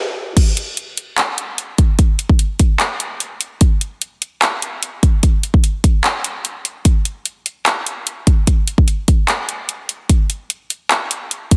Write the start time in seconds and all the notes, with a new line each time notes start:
0.37 kick, closed hi-hat, crash
0.57 closed hi-hat
0.77 closed hi-hat
0.97 closed hi-hat
1.18 clap, closed hi-hat
1.38 closed hi-hat
1.58 closed hi-hat
1.78 kick, closed hi-hat
1.99 kick, closed hi-hat
2.19 closed hi-hat
2.29 kick
2.39 closed hi-hat
2.59 kick, closed hi-hat
2.80 clap, closed hi-hat
3.00 closed hi-hat
3.20 closed hi-hat
3.41 closed hi-hat
3.61 kick, closed hi-hat
3.81 closed hi-hat
4.02 closed hi-hat
4.22 closed hi-hat
4.42 clap, closed hi-hat
4.62 closed hi-hat
4.83 closed hi-hat
5.03 kick, closed hi-hat
5.23 kick, closed hi-hat
5.43 closed hi-hat
5.54 kick
5.64 closed hi-hat
5.84 kick, closed hi-hat
6.04 clap, closed hi-hat
6.24 closed hi-hat
6.45 closed hi-hat
6.65 closed hi-hat
6.85 kick, closed hi-hat
7.05 closed hi-hat
7.26 closed hi-hat
7.46 closed hi-hat
7.66 clap, closed hi-hat
7.87 closed hi-hat
8.07 closed hi-hat
8.27 kick, closed hi-hat
8.47 kick, closed hi-hat
8.68 closed hi-hat
8.78 kick
8.88 closed hi-hat
9.08 kick, closed hi-hat
9.28 clap, closed hi-hat
9.49 closed hi-hat
9.69 closed hi-hat
9.89 closed hi-hat
10.09 kick, closed hi-hat
10.30 closed hi-hat
10.50 closed hi-hat
10.70 closed hi-hat
10.91 clap, closed hi-hat
11.11 closed hi-hat
11.31 closed hi-hat
11.51 kick, closed hi-hat